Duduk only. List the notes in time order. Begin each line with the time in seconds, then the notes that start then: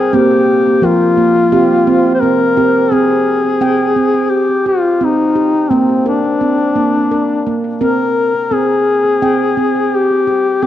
Already playing: G#4
0.15 G4
0.85 F4
2.14 C5
2.20 A#4
2.92 G#4
4.30 G4
4.68 F4
5.04 D#4
5.70 C4
6.08 D4
7.82 A#4
8.53 G#4
9.95 G4
10.63 A#4